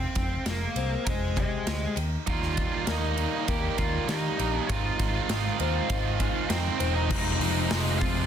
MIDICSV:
0, 0, Header, 1, 6, 480
1, 0, Start_track
1, 0, Key_signature, -4, "minor"
1, 0, Tempo, 604230
1, 1803, Time_signature, 4, 2, 24, 8
1, 6566, End_track
2, 0, Start_track
2, 0, Title_t, "Lead electric guitar"
2, 0, Program_c, 0, 29
2, 0, Note_on_c, 0, 60, 66
2, 0, Note_on_c, 0, 72, 82
2, 345, Note_off_c, 0, 60, 0
2, 350, Note_off_c, 0, 72, 0
2, 389, Note_on_c, 0, 58, 65
2, 399, Note_on_c, 0, 70, 83
2, 824, Note_off_c, 0, 58, 0
2, 862, Note_on_c, 0, 56, 66
2, 865, Note_off_c, 0, 70, 0
2, 868, Note_on_c, 0, 68, 91
2, 1077, Note_off_c, 0, 56, 0
2, 1102, Note_on_c, 0, 56, 60
2, 1103, Note_off_c, 0, 68, 0
2, 1111, Note_on_c, 0, 68, 71
2, 1540, Note_off_c, 0, 56, 0
2, 1545, Note_off_c, 0, 68, 0
2, 1823, Note_on_c, 0, 65, 63
2, 1846, Note_on_c, 0, 77, 78
2, 2260, Note_off_c, 0, 65, 0
2, 2304, Note_on_c, 0, 63, 71
2, 2316, Note_on_c, 0, 75, 90
2, 2317, Note_off_c, 0, 77, 0
2, 2741, Note_off_c, 0, 63, 0
2, 2770, Note_on_c, 0, 67, 85
2, 2775, Note_on_c, 0, 79, 91
2, 2792, Note_off_c, 0, 75, 0
2, 2990, Note_off_c, 0, 67, 0
2, 3006, Note_off_c, 0, 79, 0
2, 3006, Note_on_c, 0, 65, 74
2, 3009, Note_on_c, 0, 77, 84
2, 3227, Note_off_c, 0, 77, 0
2, 3228, Note_off_c, 0, 65, 0
2, 3254, Note_on_c, 0, 63, 60
2, 3258, Note_on_c, 0, 75, 82
2, 3632, Note_off_c, 0, 75, 0
2, 3632, Note_on_c, 0, 73, 82
2, 3696, Note_off_c, 0, 63, 0
2, 3743, Note_on_c, 0, 65, 62
2, 3744, Note_off_c, 0, 73, 0
2, 3748, Note_on_c, 0, 77, 66
2, 5158, Note_on_c, 0, 72, 83
2, 5167, Note_on_c, 0, 60, 71
2, 5382, Note_off_c, 0, 65, 0
2, 5382, Note_off_c, 0, 77, 0
2, 5500, Note_off_c, 0, 60, 0
2, 5517, Note_on_c, 0, 75, 93
2, 5530, Note_on_c, 0, 63, 71
2, 5531, Note_off_c, 0, 72, 0
2, 5625, Note_off_c, 0, 75, 0
2, 5634, Note_on_c, 0, 75, 85
2, 5635, Note_off_c, 0, 63, 0
2, 5644, Note_on_c, 0, 63, 74
2, 6332, Note_off_c, 0, 63, 0
2, 6340, Note_off_c, 0, 75, 0
2, 6344, Note_on_c, 0, 77, 95
2, 6361, Note_on_c, 0, 65, 70
2, 6566, Note_off_c, 0, 65, 0
2, 6566, Note_off_c, 0, 77, 0
2, 6566, End_track
3, 0, Start_track
3, 0, Title_t, "Steel-string acoustic guitar"
3, 0, Program_c, 1, 25
3, 0, Note_on_c, 1, 41, 71
3, 374, Note_on_c, 1, 56, 62
3, 611, Note_on_c, 1, 60, 69
3, 836, Note_off_c, 1, 56, 0
3, 846, Note_on_c, 1, 56, 69
3, 1081, Note_on_c, 1, 48, 68
3, 1085, Note_off_c, 1, 41, 0
3, 1553, Note_off_c, 1, 48, 0
3, 1556, Note_on_c, 1, 51, 68
3, 1564, Note_off_c, 1, 56, 0
3, 1566, Note_off_c, 1, 60, 0
3, 1790, Note_off_c, 1, 51, 0
3, 1799, Note_on_c, 1, 51, 77
3, 2285, Note_on_c, 1, 58, 60
3, 2529, Note_on_c, 1, 63, 64
3, 2756, Note_off_c, 1, 58, 0
3, 2766, Note_on_c, 1, 58, 75
3, 2995, Note_off_c, 1, 51, 0
3, 3004, Note_on_c, 1, 51, 70
3, 3246, Note_on_c, 1, 55, 72
3, 3486, Note_off_c, 1, 63, 0
3, 3490, Note_on_c, 1, 63, 76
3, 3723, Note_off_c, 1, 51, 0
3, 3723, Note_off_c, 1, 58, 0
3, 3724, Note_off_c, 1, 55, 0
3, 3733, Note_on_c, 1, 56, 74
3, 4210, Note_on_c, 1, 65, 70
3, 4234, Note_off_c, 1, 63, 0
3, 4454, Note_on_c, 1, 72, 70
3, 4681, Note_off_c, 1, 65, 0
3, 4691, Note_on_c, 1, 65, 80
3, 4921, Note_off_c, 1, 56, 0
3, 4930, Note_on_c, 1, 56, 76
3, 5168, Note_on_c, 1, 63, 74
3, 5391, Note_off_c, 1, 72, 0
3, 5401, Note_on_c, 1, 72, 77
3, 5642, Note_off_c, 1, 72, 0
3, 5646, Note_off_c, 1, 63, 0
3, 5647, Note_off_c, 1, 56, 0
3, 5647, Note_off_c, 1, 65, 0
3, 6566, End_track
4, 0, Start_track
4, 0, Title_t, "Distorted electric guitar"
4, 0, Program_c, 2, 30
4, 1800, Note_on_c, 2, 51, 83
4, 1808, Note_on_c, 2, 55, 97
4, 1811, Note_on_c, 2, 58, 92
4, 1816, Note_on_c, 2, 63, 94
4, 2264, Note_off_c, 2, 51, 0
4, 2272, Note_off_c, 2, 55, 0
4, 2273, Note_on_c, 2, 51, 86
4, 2278, Note_off_c, 2, 58, 0
4, 2282, Note_on_c, 2, 55, 77
4, 2287, Note_off_c, 2, 63, 0
4, 2288, Note_on_c, 2, 58, 83
4, 2290, Note_on_c, 2, 63, 87
4, 2508, Note_off_c, 2, 51, 0
4, 2515, Note_off_c, 2, 55, 0
4, 2517, Note_on_c, 2, 51, 73
4, 2521, Note_off_c, 2, 58, 0
4, 2525, Note_on_c, 2, 55, 85
4, 2531, Note_on_c, 2, 58, 78
4, 2533, Note_off_c, 2, 63, 0
4, 2537, Note_on_c, 2, 63, 84
4, 2753, Note_off_c, 2, 51, 0
4, 2762, Note_off_c, 2, 55, 0
4, 2763, Note_on_c, 2, 51, 93
4, 2766, Note_off_c, 2, 58, 0
4, 2772, Note_on_c, 2, 55, 91
4, 2776, Note_off_c, 2, 63, 0
4, 2776, Note_on_c, 2, 58, 90
4, 2779, Note_on_c, 2, 63, 98
4, 3233, Note_off_c, 2, 51, 0
4, 3236, Note_off_c, 2, 55, 0
4, 3241, Note_off_c, 2, 58, 0
4, 3242, Note_on_c, 2, 51, 87
4, 3246, Note_on_c, 2, 55, 76
4, 3250, Note_off_c, 2, 63, 0
4, 3251, Note_on_c, 2, 58, 94
4, 3253, Note_on_c, 2, 63, 88
4, 3465, Note_off_c, 2, 51, 0
4, 3468, Note_off_c, 2, 55, 0
4, 3474, Note_on_c, 2, 51, 79
4, 3477, Note_off_c, 2, 58, 0
4, 3478, Note_on_c, 2, 55, 78
4, 3487, Note_off_c, 2, 63, 0
4, 3487, Note_on_c, 2, 58, 76
4, 3490, Note_on_c, 2, 63, 90
4, 3703, Note_off_c, 2, 51, 0
4, 3705, Note_off_c, 2, 55, 0
4, 3710, Note_off_c, 2, 58, 0
4, 3711, Note_on_c, 2, 44, 96
4, 3718, Note_on_c, 2, 51, 89
4, 3720, Note_on_c, 2, 56, 103
4, 3724, Note_on_c, 2, 60, 114
4, 3726, Note_off_c, 2, 63, 0
4, 3729, Note_on_c, 2, 63, 101
4, 4190, Note_off_c, 2, 44, 0
4, 4194, Note_off_c, 2, 51, 0
4, 4199, Note_off_c, 2, 56, 0
4, 4200, Note_on_c, 2, 44, 85
4, 4203, Note_off_c, 2, 60, 0
4, 4203, Note_on_c, 2, 51, 76
4, 4208, Note_on_c, 2, 56, 79
4, 4210, Note_off_c, 2, 63, 0
4, 4213, Note_on_c, 2, 60, 81
4, 4220, Note_on_c, 2, 63, 91
4, 4425, Note_off_c, 2, 44, 0
4, 4431, Note_off_c, 2, 51, 0
4, 4433, Note_off_c, 2, 56, 0
4, 4435, Note_on_c, 2, 44, 81
4, 4441, Note_off_c, 2, 60, 0
4, 4441, Note_off_c, 2, 63, 0
4, 4441, Note_on_c, 2, 51, 85
4, 4443, Note_on_c, 2, 56, 84
4, 4450, Note_on_c, 2, 60, 97
4, 4451, Note_on_c, 2, 63, 88
4, 4662, Note_off_c, 2, 44, 0
4, 4668, Note_off_c, 2, 51, 0
4, 4672, Note_on_c, 2, 44, 92
4, 4673, Note_off_c, 2, 56, 0
4, 4674, Note_off_c, 2, 60, 0
4, 4677, Note_on_c, 2, 51, 93
4, 4681, Note_off_c, 2, 63, 0
4, 4683, Note_on_c, 2, 56, 110
4, 4684, Note_on_c, 2, 60, 86
4, 4690, Note_on_c, 2, 63, 105
4, 5145, Note_off_c, 2, 44, 0
4, 5148, Note_off_c, 2, 51, 0
4, 5154, Note_off_c, 2, 56, 0
4, 5155, Note_on_c, 2, 44, 82
4, 5158, Note_on_c, 2, 51, 85
4, 5161, Note_off_c, 2, 60, 0
4, 5162, Note_off_c, 2, 63, 0
4, 5164, Note_on_c, 2, 56, 83
4, 5171, Note_on_c, 2, 60, 103
4, 5172, Note_on_c, 2, 63, 99
4, 5377, Note_off_c, 2, 44, 0
4, 5387, Note_off_c, 2, 51, 0
4, 5387, Note_on_c, 2, 44, 74
4, 5390, Note_off_c, 2, 56, 0
4, 5395, Note_off_c, 2, 60, 0
4, 5396, Note_on_c, 2, 51, 75
4, 5400, Note_off_c, 2, 63, 0
4, 5400, Note_on_c, 2, 56, 84
4, 5404, Note_on_c, 2, 60, 91
4, 5410, Note_on_c, 2, 63, 89
4, 5620, Note_off_c, 2, 44, 0
4, 5625, Note_off_c, 2, 51, 0
4, 5627, Note_off_c, 2, 56, 0
4, 5629, Note_off_c, 2, 60, 0
4, 5632, Note_off_c, 2, 63, 0
4, 5637, Note_on_c, 2, 41, 88
4, 5642, Note_on_c, 2, 48, 102
4, 5646, Note_on_c, 2, 53, 96
4, 5649, Note_on_c, 2, 56, 110
4, 5653, Note_on_c, 2, 60, 99
4, 5866, Note_off_c, 2, 41, 0
4, 5874, Note_off_c, 2, 48, 0
4, 5875, Note_on_c, 2, 41, 84
4, 5878, Note_off_c, 2, 53, 0
4, 5883, Note_on_c, 2, 48, 80
4, 5887, Note_off_c, 2, 60, 0
4, 5888, Note_on_c, 2, 53, 90
4, 5889, Note_off_c, 2, 56, 0
4, 5892, Note_on_c, 2, 56, 94
4, 5897, Note_on_c, 2, 60, 104
4, 6106, Note_off_c, 2, 41, 0
4, 6113, Note_off_c, 2, 48, 0
4, 6115, Note_on_c, 2, 41, 74
4, 6119, Note_off_c, 2, 53, 0
4, 6123, Note_on_c, 2, 48, 78
4, 6126, Note_off_c, 2, 60, 0
4, 6129, Note_on_c, 2, 53, 80
4, 6131, Note_off_c, 2, 56, 0
4, 6134, Note_on_c, 2, 56, 94
4, 6136, Note_on_c, 2, 60, 93
4, 6346, Note_off_c, 2, 41, 0
4, 6355, Note_off_c, 2, 48, 0
4, 6355, Note_on_c, 2, 41, 75
4, 6361, Note_off_c, 2, 53, 0
4, 6365, Note_on_c, 2, 48, 80
4, 6367, Note_off_c, 2, 60, 0
4, 6370, Note_off_c, 2, 56, 0
4, 6371, Note_on_c, 2, 53, 83
4, 6373, Note_on_c, 2, 56, 79
4, 6377, Note_on_c, 2, 60, 92
4, 6566, Note_off_c, 2, 41, 0
4, 6566, Note_off_c, 2, 48, 0
4, 6566, Note_off_c, 2, 53, 0
4, 6566, Note_off_c, 2, 56, 0
4, 6566, Note_off_c, 2, 60, 0
4, 6566, End_track
5, 0, Start_track
5, 0, Title_t, "Picked electric bass"
5, 0, Program_c, 3, 34
5, 131, Note_on_c, 3, 29, 81
5, 273, Note_off_c, 3, 29, 0
5, 367, Note_on_c, 3, 29, 84
5, 511, Note_off_c, 3, 29, 0
5, 601, Note_on_c, 3, 36, 79
5, 746, Note_off_c, 3, 36, 0
5, 846, Note_on_c, 3, 29, 83
5, 1134, Note_off_c, 3, 29, 0
5, 1324, Note_on_c, 3, 38, 86
5, 1468, Note_off_c, 3, 38, 0
5, 1562, Note_on_c, 3, 39, 83
5, 1706, Note_off_c, 3, 39, 0
5, 1806, Note_on_c, 3, 39, 81
5, 2094, Note_off_c, 3, 39, 0
5, 2283, Note_on_c, 3, 39, 85
5, 2571, Note_off_c, 3, 39, 0
5, 2767, Note_on_c, 3, 39, 77
5, 2910, Note_off_c, 3, 39, 0
5, 3009, Note_on_c, 3, 39, 83
5, 3151, Note_off_c, 3, 39, 0
5, 3243, Note_on_c, 3, 51, 89
5, 3387, Note_off_c, 3, 51, 0
5, 3491, Note_on_c, 3, 34, 86
5, 3633, Note_off_c, 3, 34, 0
5, 3732, Note_on_c, 3, 32, 92
5, 3873, Note_off_c, 3, 32, 0
5, 3970, Note_on_c, 3, 32, 91
5, 4112, Note_off_c, 3, 32, 0
5, 4208, Note_on_c, 3, 32, 83
5, 4350, Note_off_c, 3, 32, 0
5, 4446, Note_on_c, 3, 39, 83
5, 4589, Note_off_c, 3, 39, 0
5, 4688, Note_on_c, 3, 32, 84
5, 4975, Note_off_c, 3, 32, 0
5, 5161, Note_on_c, 3, 41, 95
5, 5306, Note_off_c, 3, 41, 0
5, 5404, Note_on_c, 3, 28, 88
5, 5646, Note_off_c, 3, 28, 0
5, 5646, Note_on_c, 3, 29, 86
5, 5858, Note_off_c, 3, 29, 0
5, 5885, Note_on_c, 3, 29, 92
5, 6098, Note_off_c, 3, 29, 0
5, 6129, Note_on_c, 3, 29, 82
5, 6554, Note_off_c, 3, 29, 0
5, 6566, End_track
6, 0, Start_track
6, 0, Title_t, "Drums"
6, 122, Note_on_c, 9, 51, 77
6, 127, Note_on_c, 9, 36, 91
6, 201, Note_off_c, 9, 51, 0
6, 206, Note_off_c, 9, 36, 0
6, 364, Note_on_c, 9, 51, 92
6, 366, Note_on_c, 9, 38, 112
6, 444, Note_off_c, 9, 51, 0
6, 445, Note_off_c, 9, 38, 0
6, 603, Note_on_c, 9, 51, 61
6, 683, Note_off_c, 9, 51, 0
6, 847, Note_on_c, 9, 51, 90
6, 848, Note_on_c, 9, 36, 108
6, 926, Note_off_c, 9, 51, 0
6, 927, Note_off_c, 9, 36, 0
6, 1087, Note_on_c, 9, 36, 72
6, 1089, Note_on_c, 9, 51, 58
6, 1167, Note_off_c, 9, 36, 0
6, 1169, Note_off_c, 9, 51, 0
6, 1325, Note_on_c, 9, 51, 90
6, 1327, Note_on_c, 9, 38, 108
6, 1405, Note_off_c, 9, 51, 0
6, 1406, Note_off_c, 9, 38, 0
6, 1565, Note_on_c, 9, 51, 68
6, 1645, Note_off_c, 9, 51, 0
6, 1803, Note_on_c, 9, 51, 81
6, 1807, Note_on_c, 9, 36, 107
6, 1882, Note_off_c, 9, 51, 0
6, 1886, Note_off_c, 9, 36, 0
6, 1926, Note_on_c, 9, 38, 30
6, 2005, Note_off_c, 9, 38, 0
6, 2043, Note_on_c, 9, 51, 67
6, 2047, Note_on_c, 9, 36, 85
6, 2122, Note_off_c, 9, 51, 0
6, 2126, Note_off_c, 9, 36, 0
6, 2280, Note_on_c, 9, 51, 94
6, 2281, Note_on_c, 9, 38, 122
6, 2359, Note_off_c, 9, 51, 0
6, 2361, Note_off_c, 9, 38, 0
6, 2523, Note_on_c, 9, 51, 66
6, 2602, Note_off_c, 9, 51, 0
6, 2765, Note_on_c, 9, 51, 87
6, 2767, Note_on_c, 9, 36, 116
6, 2844, Note_off_c, 9, 51, 0
6, 2847, Note_off_c, 9, 36, 0
6, 3002, Note_on_c, 9, 51, 67
6, 3007, Note_on_c, 9, 36, 70
6, 3082, Note_off_c, 9, 51, 0
6, 3086, Note_off_c, 9, 36, 0
6, 3246, Note_on_c, 9, 51, 87
6, 3248, Note_on_c, 9, 38, 106
6, 3326, Note_off_c, 9, 51, 0
6, 3327, Note_off_c, 9, 38, 0
6, 3491, Note_on_c, 9, 51, 69
6, 3571, Note_off_c, 9, 51, 0
6, 3730, Note_on_c, 9, 36, 105
6, 3731, Note_on_c, 9, 51, 87
6, 3809, Note_off_c, 9, 36, 0
6, 3810, Note_off_c, 9, 51, 0
6, 3967, Note_on_c, 9, 51, 74
6, 3968, Note_on_c, 9, 36, 92
6, 4047, Note_off_c, 9, 51, 0
6, 4048, Note_off_c, 9, 36, 0
6, 4206, Note_on_c, 9, 51, 99
6, 4207, Note_on_c, 9, 38, 113
6, 4285, Note_off_c, 9, 51, 0
6, 4287, Note_off_c, 9, 38, 0
6, 4445, Note_on_c, 9, 51, 66
6, 4525, Note_off_c, 9, 51, 0
6, 4685, Note_on_c, 9, 51, 99
6, 4686, Note_on_c, 9, 36, 103
6, 4764, Note_off_c, 9, 51, 0
6, 4765, Note_off_c, 9, 36, 0
6, 4924, Note_on_c, 9, 51, 69
6, 4926, Note_on_c, 9, 36, 81
6, 5004, Note_off_c, 9, 51, 0
6, 5005, Note_off_c, 9, 36, 0
6, 5162, Note_on_c, 9, 51, 101
6, 5164, Note_on_c, 9, 38, 109
6, 5242, Note_off_c, 9, 51, 0
6, 5243, Note_off_c, 9, 38, 0
6, 5404, Note_on_c, 9, 51, 75
6, 5483, Note_off_c, 9, 51, 0
6, 5643, Note_on_c, 9, 49, 120
6, 5646, Note_on_c, 9, 36, 117
6, 5723, Note_off_c, 9, 49, 0
6, 5725, Note_off_c, 9, 36, 0
6, 5886, Note_on_c, 9, 46, 66
6, 5966, Note_off_c, 9, 46, 0
6, 6122, Note_on_c, 9, 46, 78
6, 6124, Note_on_c, 9, 38, 121
6, 6201, Note_off_c, 9, 46, 0
6, 6203, Note_off_c, 9, 38, 0
6, 6246, Note_on_c, 9, 38, 32
6, 6325, Note_off_c, 9, 38, 0
6, 6364, Note_on_c, 9, 46, 55
6, 6366, Note_on_c, 9, 36, 90
6, 6443, Note_off_c, 9, 46, 0
6, 6446, Note_off_c, 9, 36, 0
6, 6566, End_track
0, 0, End_of_file